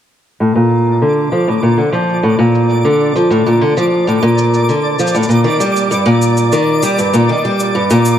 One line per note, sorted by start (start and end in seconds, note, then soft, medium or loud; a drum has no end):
0.40 0.54 A2 medium
0.40 8.19 D5 medium
0.40 8.19 D6 medium
0.40 shaker soft
0.55 1.00 A#2 medium
0.71 shaker medium
0.86 shaker soft
1.02 1.31 D3 medium
1.02 shaker soft
1.32 1.47 F3 medium
1.32 shaker medium
1.48 1.62 A2 medium
1.48 shaker soft
1.63 1.76 A#2 medium
1.63 shaker soft
1.78 1.92 D3 medium
1.92 2.22 F3 medium
1.92 shaker medium
2.09 shaker soft
2.23 2.37 A2 medium
2.23 shaker soft
2.39 2.83 A#2 medium
2.55 shaker medium
2.70 shaker soft
2.85 3.14 D3 medium
2.85 shaker soft
3.15 3.30 F3 medium
3.15 shaker medium
3.31 3.45 A2 medium
3.31 shaker soft
3.46 3.60 A#2 medium
3.46 shaker soft
3.61 3.75 D3 medium
3.77 4.06 F3 medium
3.77 shaker medium
4.07 4.21 A2 medium
4.07 shaker soft
4.23 4.67 A#2 medium
4.38 shaker medium
4.54 shaker soft
4.69 4.98 D3 medium
4.69 shaker soft
4.99 5.14 F3 medium
4.99 shaker medium
5.07 shaker medium
5.15 5.28 A2 medium
5.15 shaker soft
5.23 shaker soft
5.29 5.43 A#2 medium
5.29 shaker soft
5.44 5.59 D#3 medium
5.60 5.89 G3 medium
5.60 shaker medium
5.76 shaker soft
5.91 6.05 G2 medium
5.91 shaker soft
6.06 6.50 A#2 medium
6.22 shaker medium
6.37 shaker soft
6.52 6.81 D#3 medium
6.52 shaker soft
6.83 6.97 G3 medium
6.83 shaker medium
6.99 7.13 G2 medium
6.99 shaker soft
7.13 7.27 A#2 medium
7.13 shaker soft
7.29 7.43 D#3 medium
7.45 7.74 G3 medium
7.60 shaker soft
7.75 7.89 G2 medium
7.90 8.19 A#2 medium
7.90 shaker soft
8.06 shaker medium